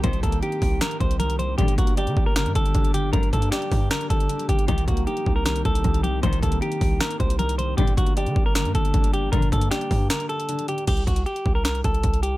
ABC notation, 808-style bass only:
X:1
M:4/4
L:1/16
Q:1/4=155
K:Cdor
V:1 name="808-style bass" clef=bass
C,,2 C,,2 z2 C,,2 z2 C,,6 | G,,,2 G,,,3 D, G,,,3 G,, G,,,2 G,,,4 | G,,,2 G,,2 z2 G,,2 z2 G,,,2 z2 G,,,2 | C,,2 C,,2 z2 C,,4 C,,2 C,,4 |
C,,2 C,,2 z2 C,,2 z2 C,,6 | G,,,2 G,,,3 D, G,,,3 G,, G,,,2 G,,,4 | G,,,2 G,,2 z2 G,,2 z8 | C,,2 C,,2 z2 C,,4 C,,2 C,,4 |]